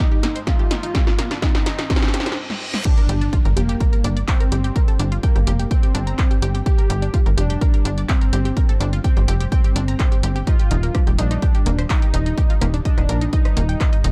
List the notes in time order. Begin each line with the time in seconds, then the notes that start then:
Already playing: G2 G3 D#4, riser
0.00 G4
0.12 G4
0.23 A#3, snare, closed hi-hat
0.36 C5, closed hi-hat
0.47 F4 D#5, kick, snare, closed hi-hat
0.59 G4
0.71 D#4, snare, closed hi-hat
0.83 D#4, closed hi-hat
0.95 G4, kick, snare, closed hi-hat
1.07 F4, snare
1.18 A#3, snare, closed hi-hat
1.31 D4, snare, closed hi-hat
1.42 D#4 D#5, kick, snare, closed hi-hat
1.55 D#4, snare
1.66 D#4, snare, closed hi-hat
1.78 D#4, snare, closed hi-hat
1.90 C4 D#5, kick, snare, closed hi-hat, reverse cymbal
1.96 snare
2.02 D#4, snare
2.08 snare
2.14 G4, snare, closed hi-hat
2.20 snare
2.26 C5, snare, closed hi-hat
2.32 snare
2.50 snare
2.74 snare
2.85 G2 G3 D4 G4 G5, kick, closed hi-hat, crash, impact
2.98 A#4 A#5, closed hi-hat
3.09 G1 G4 G5, closed hi-hat
3.21 D4 D5, closed hi-hat
3.33 F4 F5, kick, closed hi-hat
3.45 G1 A#4 A#5, closed hi-hat
3.57 F1 A#3 G4 G5, closed hi-hat
3.69 G4 G5, closed hi-hat
3.80 A#4 A#5, kick, closed hi-hat
3.93 A#4 A#5, closed hi-hat
4.04 G1 D4 D5, closed hi-hat
4.17 D5 D6, closed hi-hat
4.28 C4 G5 G6, kick, clap, closed hi-hat
4.40 A#4 A#5, closed hi-hat
4.52 G1 G4 G5, closed hi-hat
4.64 G4 G5, closed hi-hat
4.76 A#4 A#5, kick, closed hi-hat
4.88 A4 A5, closed hi-hat
4.99 G1 D4 D5, closed hi-hat
5.12 F4 F5, closed hi-hat
5.23 A#3 G5 G6, kick, closed hi-hat
5.36 G1 G4 G5, closed hi-hat
5.47 F1 G4 G5, closed hi-hat
5.59 G4 G5, closed hi-hat
5.71 C4 G5 G6, kick, closed hi-hat
5.83 G4 G5, closed hi-hat
5.95 G1 D4 D5, closed hi-hat
6.07 A#5 A#6, closed hi-hat
6.18 G5 G6, kick, clap, closed hi-hat
6.31 G4 G5, closed hi-hat
6.42 G1 G4 G5, closed hi-hat
6.55 G4 G5, closed hi-hat
6.66 G4 G5, kick, closed hi-hat
6.78 A#4 A#5, closed hi-hat
6.90 G1 G4 G5, closed hi-hat
7.02 D4 D5, closed hi-hat
7.14 F4 F5, kick, closed hi-hat
7.26 G1 A#4 A#5, closed hi-hat
7.37 F1 D4 G4 G5, closed hi-hat
7.50 G4 G5, closed hi-hat
7.61 A#4 A#5, kick, closed hi-hat
7.74 A#4 A#5, closed hi-hat
7.85 G1 D4 D5, closed hi-hat
7.98 D5 D6, closed hi-hat
8.09 C4 G5 G6, kick, clap, closed hi-hat
8.21 A#4 A#5, closed hi-hat
8.33 G1 G4 G5, closed hi-hat
8.45 G4 G5, closed hi-hat
8.57 A#4 A#5, kick, closed hi-hat
8.69 A4 A5, closed hi-hat
8.80 G1 D4 D5, closed hi-hat
8.93 F4 F5, closed hi-hat
9.04 C4 G5 G6, kick, closed hi-hat
9.17 G1 G4 G5, closed hi-hat
9.28 F1 G4 G5, closed hi-hat
9.40 G4 G5, closed hi-hat
9.52 C4 G5 G6, kick, closed hi-hat
9.64 G4 G5, closed hi-hat
9.76 G1 D4 D5, closed hi-hat
9.88 A#5 A#6, closed hi-hat
9.99 G5 G6, kick, clap, closed hi-hat
10.12 G4 G5, closed hi-hat
10.23 G1 G4 G5, closed hi-hat
10.36 G4 G5, closed hi-hat
10.47 D#4 F4 D#5, kick, cross-stick, closed hi-hat
10.59 G4 G5, closed hi-hat
10.71 D#1 D#4 D#5, closed hi-hat
10.83 A#3 A#4, closed hi-hat
10.95 D4 D5, kick, cross-stick, closed hi-hat
11.07 D#1 G4 G5, closed hi-hat
11.18 A#1 D4 D#4 D#5, closed hi-hat
11.31 D#4 D#5, cross-stick, closed hi-hat
11.42 G4 G5, kick, closed hi-hat
11.55 G4 G5, closed hi-hat
11.66 D#1 A#3 A#4, closed hi-hat
11.79 C5 C6, cross-stick, closed hi-hat
11.90 D#4 D#5 D#6, kick, clap, closed hi-hat
12.02 G4 G5, closed hi-hat
12.14 D#1 D#4 D#5, cross-stick, closed hi-hat
12.26 D#4 D#5, closed hi-hat
12.38 G4 G5, kick, closed hi-hat
12.50 F4 F5, closed hi-hat
12.61 D#1 A#3 A#4, cross-stick, closed hi-hat
12.74 D4 D5, closed hi-hat
12.85 D4 D#5 D#6, kick, closed hi-hat
12.98 D#1 D#4 D#5, cross-stick, closed hi-hat
13.09 A#1 A#4 A#5, closed hi-hat
13.21 D#4 D#5, closed hi-hat
13.33 D#4 D#5 D#6, kick, closed hi-hat
13.45 D#4 D#5, cross-stick, closed hi-hat
13.57 D#1 A#3 A#4, closed hi-hat
13.69 G5 G6, closed hi-hat
13.80 D#5 D#6, kick, cross-stick, clap, closed hi-hat
13.93 D#4 D#5, closed hi-hat
14.04 D#1 D#4 D#5, closed hi-hat